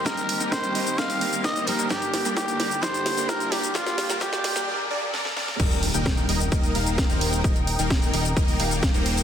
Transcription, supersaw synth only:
\new Staff \with { instrumentName = "Supersaw synth" } { \time 4/4 \key ees \major \tempo 4 = 130 <g bes ees' bes' ees''>16 r8 <g bes ees' bes' g''>8. <g bes ees' bes' ees''>16 r16 <g bes ees' bes' ees''>8 <g bes ees' bes' f''>8. <g bes ees' bes' c''>8. | <bes d' bes' d''>16 r8 <g bes d' bes' g''>8. <g bes d' bes' d''>16 r16 <g bes d' bes' d''>16 r8 <g bes d' bes' g''>8. <g bes d' bes' d''>16 r16 | <g bes d' bes' d''>16 r8 <g bes d' bes' g''>16 <g bes d' bes' d''>16 r8 <g bes d' bes' g''>16 <g bes d' bes' d''>16 r16 <g bes d' bes' d''>16 r16 <g bes d' bes' d''>16 r16 <g bes d' bes' d''>16 r16 | <g bes ees' bes' ees''>16 r8 <g bes ees' bes' g''>8. <g bes ees' bes' ees''>16 r16 <g bes ees' bes' ees''>8 <g bes ees' bes' f''>8. <g bes ees' bes' c''>8. |
<g bes ees' ees''>16 r8 <g bes ees' bes' g''>8. <g bes ees' bes' ees''>16 r16 <g bes ees' bes' ees''>8 <g bes ees' bes' f''>8. <g bes ees' bes' c''>8. | }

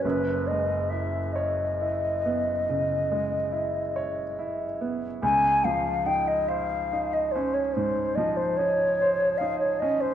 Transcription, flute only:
\new Staff \with { instrumentName = "Flute" } { \time 12/8 \key fis \mixolydian \tempo 4. = 47 b'8 dis''8 e''8 dis''1 r8 | gis''8 eis''8 g''16 dis''16 eis''8. dis''16 bis'16 cis''16 bis'8 dis''16 bis'16 cis''4 eis''16 cis''16 dis''16 bis'16 | }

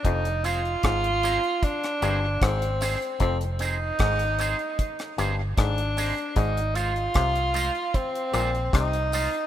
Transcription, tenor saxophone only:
\new Staff \with { instrumentName = "Tenor saxophone" } { \time 4/4 \key f \dorian \tempo 4 = 76 ees'8 f'4. d'4 c'4 | c'8 ees'2 r8 d'4 | ees'8 f'4. c'4 ees'4 | }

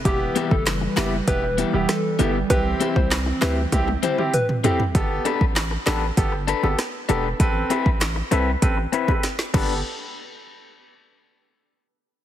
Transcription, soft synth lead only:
\new Staff \with { instrumentName = "Soft synth lead" } { \time 4/4 \key g \major \tempo 4 = 98 g'16 r8 a'16 r8 g'16 r16 b'8. r16 a'8. r16 | b'16 r8 c''16 r8 b'16 r8. c''16 r16 b'16 r16 a'16 r16 | r1 | r1 |
r1 | }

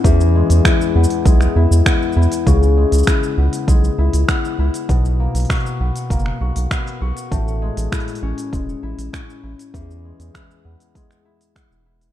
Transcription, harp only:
\new Staff \with { instrumentName = "Harp" } { \time 4/4 \key e \lydian \tempo 4 = 99 e,8 gis8 e'8 b8 gis8 e'8 b8 e'8 | cis8 gis8 e'8 b8 gis8 e'8 b8 e'8 | b,8 ais8 fis'8 b8 ais8 fis'8 b8 fis'8 | a,8 gis8 e'8 cis'8 gis8 e'8 cis'8 e'8 |
e,8 gis8 e'8 b8 gis8 e'8 b8 e'8 | }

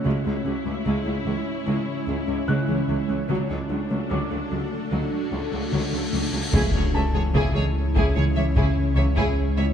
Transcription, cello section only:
\new Staff \with { instrumentName = "Cello section" } { \clef bass \time 4/4 \key cis \phrygian \tempo 4 = 74 cis,16 cis,16 cis,16 cis,16 cis,16 cis,16 cis,16 r16 cis,16 r16 cis,16 cis,16 cis,16 cis,16 cis,16 cis,16 | cis,16 cis,16 cis,16 cis,16 cis,16 cis,16 cis,16 r16 cis,16 r16 cis,16 cis,16 cis,16 cis,16 cis,16 cis,16 | cis,16 cis,16 cis,16 cis,16 cis,16 cis,16 r16 cis,16 cis,16 cis,16 cis,16 r16 cis,16 cis,16 r16 cis,16 | }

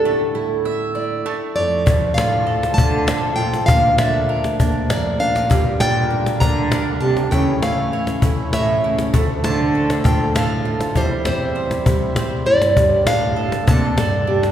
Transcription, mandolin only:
\new Staff \with { instrumentName = "Mandolin" } { \time 3/4 \key d \minor \tempo 4 = 99 a8 e'8 e''8 d''8 a8 cis''8 | a8 f'8 a'8 f'8 a'8 f'8 | bes8 d'8 bes'8 d'8 bes'8 d'8 | g8 d'8 bes'8 d'8 bes'8 d'8 |
a8 e'8 cis''8 e'8 cis''8 e'8 | a8 f'8 a'8 f'8 a'8 f'8 | g8 e'8 c''8 e'8 c''8 e'8 | r8 d'8 a'8 d'8 a'8 d'8 | }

